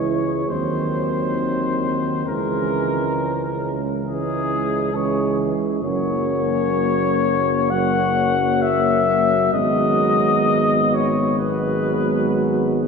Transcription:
Already playing: C#2 E3 G#3 E4 C#5
0.49 D#2 D#3 F#3 C4 C5
2.27 C#2 E3 G#3 C#4 A#4
4.05 E3 G#3 C#4 G#4
4.93 E3 G#3 C#4 C#5
5.82 F#1 F#3 A#3 C#4 C#5
7.71 F#3 A#3 C#4 F#5
8.62 E5
9.53 G#1 F#3 G#3 B3 D#5
10.95 C#5
11.37 F#3 G#3 B3 B4

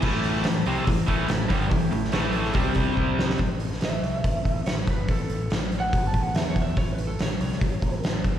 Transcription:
0.01 A1 A2 E3 A3 C#4 E4 A4, kick, crash
0.24 open hi-hat
0.35 snare
0.44 A1 A2 E3, snare, open hi-hat
0.66 C2 C3 G3 C4, open hi-hat
0.87 A1 A2 E3, kick, open hi-hat
1.07 A1 A2 E3 A3 C#4 E4 A4, kick, open hi-hat
1.28 A1 A2 E3, snare, open hi-hat
1.49 G1 G2 D3 G3, kick, open hi-hat
1.69 A1 A2 E3 A3 C#4 E4 G4, kick, open hi-hat
1.91 A1 A2 E3, open hi-hat
2.04 snare
2.12 A1 A2 E3 A3, snare, open hi-hat
2.33 open hi-hat
2.45 snare
2.54 C2 C3 G3 C4 G4 C5, kick, open hi-hat
2.75 G3 C4 G4 C5, kick, open hi-hat
2.97 kick
3.19 snare
3.30 snare
3.38 A1, kick, open hi-hat
3.60 open hi-hat
3.72 snare
3.81 A1 E5, snare, open hi-hat
4.03 C2, open hi-hat
4.24 A1, kick, open hi-hat
4.45 A1, kick, open hi-hat
4.66 A1 C#5, snare, open hi-hat
4.87 G1 B4, kick, open hi-hat
5.08 A1 A4, kick, open hi-hat
5.30 A1, open hi-hat
5.50 A1, snare, open hi-hat
5.72 open hi-hat
5.80 F#5
5.93 G1, kick, open hi-hat
6.07 A5
6.14 A1, kick, open hi-hat
6.23 F#5
6.35 E2 E5, snare, open hi-hat
6.50 C#5
6.56 kick, open hi-hat
6.62 E5
6.77 A1 C#5, kick, open hi-hat
6.92 B4
6.98 open hi-hat
7.07 A4
7.19 A1 C#5, snare, open hi-hat
7.41 C2, open hi-hat
7.53 snare
7.61 A1, kick, open hi-hat
7.82 A1, kick, open hi-hat
8.03 A1, snare, open hi-hat
8.24 G1, kick, open hi-hat

